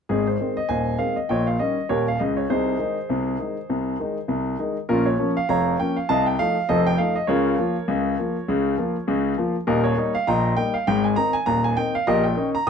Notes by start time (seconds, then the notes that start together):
0.09 G#1 G#2 C4 D#4 G#4
0.27 C5
0.40 D#3 G#3 C4
0.57 D#5
0.69 D#1 D#2 C5 D#5 G#5
0.99 D#3 G#3 C4 F5
1.16 D#5
1.29 A#1 A#2 C#5 D#5 G5
1.47 F5
1.59 D#3 G3 C#4 D#5
1.89 D#1 D#2 G4 A#4 C#5
2.08 F5
2.19 C#2 C#3 D#5
2.37 C#5
2.50 C2 C3 D#4 G#4 C5
2.79 D#3 G#3 D#4
3.09 C2 C3
3.39 D#3 G#3 D#4
3.70 C2 C3
4.00 D#3 G#3 D#4
4.28 C2 C3
4.59 D#3 G#3 D#4
4.89 A#1 A#2 C#4 F4 A#4
5.06 C#5
5.19 F3 A#3 C#4
5.37 F5
5.49 F1 F2 C#5 F5 A#5
5.80 F3 A#3 C#4 G5
5.96 F5
6.09 C2 C3 D#5 F5 A5
6.26 G5
6.39 F3 A3 D#4 F5
6.69 F1 F2 A4 C5 D#5
6.87 G5
6.98 F3 A3 D#4 F5
7.16 D#5
7.27 C#2 C#3 F4 A#4 C#5
7.58 F3 A#3 F4
7.88 C#2 C#3
8.19 F3 A#3 F4
8.48 C#2 C#3
8.78 F3 A#3 F4
9.08 C#2 C#3
9.38 F3 A#3 F4
9.67 D#1 D#2 D#4 G4 A#4
9.84 C#5
9.97 G3 A#3 D#4
10.15 F5
10.27 A#1 A#2 D#5 G5 A#5
10.57 G3 A#3 D#4 G5
10.74 F5
10.87 G#1 G#2 G5
11.04 G#5
11.16 D#3 C4 D#4 A#5
11.33 G#5
11.46 D#1 D#2 A#5
11.64 G#5
11.77 D#3 C4 D#4 G5
11.95 F5
12.07 A#1 A#2 G4 A#4 D#5
12.24 G5
12.37 D#3 C#4 D#4
12.55 A#5